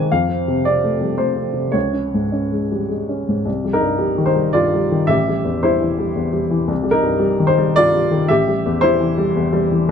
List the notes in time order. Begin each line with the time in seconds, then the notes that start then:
Already playing: G#2 D#3 G3 G#3 C4 G#5 A#5 C6
0.12 F2 F5
0.28 C4
0.48 C3
0.65 C4 D5
0.84 A3
1.01 G3
1.18 A3 C5
1.36 C4
1.54 C3
1.72 C#2 C#5
1.93 C#4
2.14 G#2
2.32 C#4
2.52 G#3
2.72 G3
2.89 G#3
3.09 C#4
3.28 G#2
3.45 C2
3.64 G3
3.73 D#4 A#4
3.81 G2
3.99 G3
4.18 D#3
4.26 D#4 C5
4.35 G3
4.53 G2 F4 D5
4.74 G3
4.92 D#3
5.07 A1 G4 E5
5.28 G3
5.44 E2
5.63 G3 E4 C5
5.81 E3
5.98 G3
6.16 E2
6.33 G3
6.51 E3
6.68 C2
6.83 G3
6.91 D#4 A#4
7.03 G2
7.19 G3
7.39 D#3
7.47 D#4 C5
7.58 G3
7.76 G2 F4 D5
7.93 G3
8.11 D#3
8.28 A1 G4 E5
8.48 G3
8.66 E2
8.81 G3 E4 C5
9.00 E3
9.18 G3
9.36 E2
9.53 G3
9.71 E3